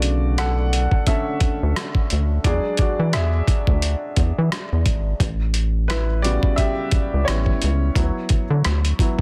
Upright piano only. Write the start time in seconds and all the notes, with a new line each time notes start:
Already playing: C#3 D3 A3 F#4 D5
0.38 A4 F#5
1.07 D3 A3 C#4 A4 E5
2.45 F#3 G#3 D4 G#4 D5
2.79 F#4 D5
3.13 G#4 E5
5.88 E4 B4
6.22 C#3 G3 B3 F#4 D5
6.56 G4 E5
7.25 G3 B3 C#4 E4 C#5
7.96 F#3 B3 E4
9.00 F#3 B3 E4